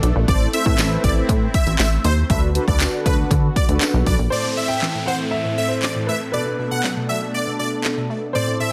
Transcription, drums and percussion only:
0.03 closed hi-hat medium
0.28 kick loud
0.28 closed hi-hat medium
0.53 closed hi-hat medium
0.66 kick medium
0.79 snare medium
0.79 clap loud
0.79 closed hi-hat loud
0.79 tambourine loud
1.04 kick medium
1.04 closed hi-hat medium
1.29 kick loud
1.29 closed hi-hat loud
1.54 kick medium
1.54 closed hi-hat medium
1.67 closed hi-hat medium
1.79 snare loud
1.79 clap loud
1.79 closed hi-hat medium
1.79 tambourine medium
2.04 closed hi-hat medium
2.30 kick loud
2.30 closed hi-hat medium
2.55 closed hi-hat medium
2.68 kick medium
2.80 snare medium
2.80 clap loud
2.80 closed hi-hat loud
2.80 tambourine loud
3.06 kick medium
3.06 closed hi-hat medium
3.31 kick loud
3.31 closed hi-hat loud
3.56 kick medium
3.56 closed hi-hat medium
3.69 closed hi-hat medium
3.81 snare medium
3.81 clap loud
3.81 closed hi-hat medium
3.81 tambourine medium
4.06 kick loud
4.06 open hi-hat medium
4.82 snare medium
4.82 clap loud
5.83 snare medium
5.83 clap loud
6.84 snare medium
6.84 clap loud
7.84 snare medium
7.84 clap loud

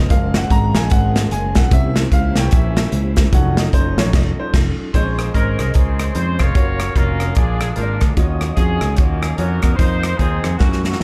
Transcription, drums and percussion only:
0.10 kick loud
0.10 closed hi-hat medium
0.34 snare loud
0.34 closed hi-hat medium
0.50 kick medium
0.50 closed hi-hat medium
0.75 snare loud
0.75 closed hi-hat medium
0.90 kick loud
0.90 closed hi-hat loud
1.16 snare loud
1.16 closed hi-hat medium
1.31 closed hi-hat medium
1.55 kick medium
1.55 snare loud
1.55 closed hi-hat medium
1.71 kick loud
1.71 closed hi-hat medium
1.96 snare loud
1.96 closed hi-hat medium
2.12 kick medium
2.12 closed hi-hat medium
2.35 snare medium
2.35 closed hi-hat medium
2.51 kick loud
2.51 closed hi-hat medium
2.77 snare loud
2.77 closed hi-hat medium
2.92 closed hi-hat medium
3.16 kick medium
3.16 snare loud
3.16 closed hi-hat medium
3.33 kick loud
3.33 closed hi-hat medium
3.57 snare loud
3.57 closed hi-hat medium
3.73 kick medium
3.73 closed hi-hat medium
3.98 snare loud
3.98 closed hi-hat medium
4.13 kick loud
4.13 snare loud
4.13 crash medium
4.54 kick loud
4.54 snare loud
4.54 crash medium
4.94 kick medium
4.94 closed hi-hat medium
5.19 cross-stick medium
5.19 closed hi-hat medium
5.34 kick medium
5.34 closed hi-hat medium
5.59 cross-stick medium
5.59 closed hi-hat medium
5.74 kick loud
5.74 closed hi-hat medium
5.99 cross-stick loud
5.99 closed hi-hat medium
6.15 closed hi-hat medium
6.39 kick medium
6.39 cross-stick medium
6.39 closed hi-hat medium
6.55 kick loud
6.55 closed hi-hat medium
6.80 cross-stick loud
6.80 closed hi-hat medium
6.96 kick medium
6.96 closed hi-hat medium
7.20 cross-stick medium
7.20 closed hi-hat medium
7.35 kick loud
7.35 closed hi-hat medium
7.60 cross-stick loud
7.60 closed hi-hat medium
7.76 closed hi-hat medium
8.01 kick medium
8.01 cross-stick loud
8.01 closed hi-hat medium
8.17 kick medium
8.17 closed hi-hat medium
8.41 cross-stick medium
8.41 closed hi-hat medium
8.57 kick medium
8.57 closed hi-hat medium
8.81 cross-stick loud
8.81 closed hi-hat medium
8.96 kick loud
8.96 closed hi-hat medium
9.22 cross-stick loud
9.22 closed hi-hat medium
9.38 closed hi-hat medium
9.62 kick medium
9.62 cross-stick medium
9.62 closed hi-hat medium
9.79 kick medium
9.79 closed hi-hat medium
10.03 cross-stick loud
10.03 closed hi-hat medium
10.19 kick medium
10.19 closed hi-hat medium
10.44 cross-stick loud
10.44 closed hi-hat medium
10.60 kick medium
10.60 snare soft
10.72 snare soft
10.84 snare medium
10.93 snare soft

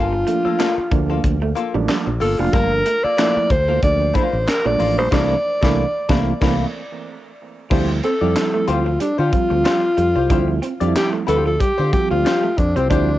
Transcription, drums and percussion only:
0.27 closed hi-hat medium
0.60 snare medium
0.60 clap medium
0.60 closed hi-hat medium
0.91 kick loud
0.91 closed hi-hat medium
1.24 kick medium
1.24 closed hi-hat medium
1.56 closed hi-hat medium
1.88 snare loud
1.88 clap medium
1.88 closed hi-hat medium
2.21 open hi-hat medium
2.53 kick loud
2.53 closed hi-hat medium
2.86 closed hi-hat medium
3.18 snare loud
3.18 clap medium
3.18 closed hi-hat medium
3.50 kick medium
3.50 closed hi-hat medium
3.82 kick medium
3.82 closed hi-hat loud
4.15 kick medium
4.15 closed hi-hat medium
4.47 snare medium
4.47 clap medium
4.47 closed hi-hat medium
4.80 open hi-hat medium
5.12 kick loud
5.12 snare medium
5.12 crash medium
5.63 kick loud
5.63 snare loud
6.09 kick loud
6.09 snare loud
6.42 kick loud
6.42 snare loud
6.42 crash medium
7.71 kick loud
7.71 crash medium
8.03 closed hi-hat medium
8.36 snare medium
8.36 clap medium
8.36 closed hi-hat loud
8.68 closed hi-hat medium
9.00 closed hi-hat loud
9.33 kick medium
9.33 closed hi-hat medium
9.65 snare medium
9.65 clap medium
9.65 closed hi-hat medium
9.98 closed hi-hat medium
10.30 kick loud
10.30 closed hi-hat medium
10.63 closed hi-hat medium
10.81 closed hi-hat medium
10.96 snare medium
10.96 clap medium
10.96 closed hi-hat loud
11.28 closed hi-hat medium
11.60 kick medium
11.60 closed hi-hat loud
11.93 kick medium
11.93 closed hi-hat medium
12.26 snare medium
12.26 clap medium
12.26 closed hi-hat medium
12.58 kick medium
12.58 closed hi-hat medium
12.76 closed hi-hat soft
12.91 kick loud
12.91 closed hi-hat medium

